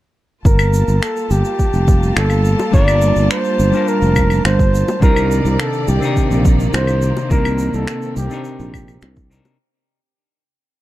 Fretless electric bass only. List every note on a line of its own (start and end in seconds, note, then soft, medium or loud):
0.45 0.82 G1 medium
0.88 0.99 G1 medium
1.31 1.42 G1 medium
1.74 2.11 F1 medium
2.17 2.54 G1 medium
2.74 3.11 G1 medium
3.16 3.27 G1 medium
3.60 3.70 G1 medium
4.02 4.39 F1 medium
4.45 4.82 G1 medium
5.02 5.40 C2 medium
5.45 5.56 C2 medium
5.88 5.99 C2 medium
6.31 6.68 A#1 medium
6.74 7.11 C2 loud
7.31 7.68 C2 loud
7.74 7.85 C2 medium
8.17 8.27 C2 medium
8.60 8.97 A#1 medium
9.02 9.40 C2 medium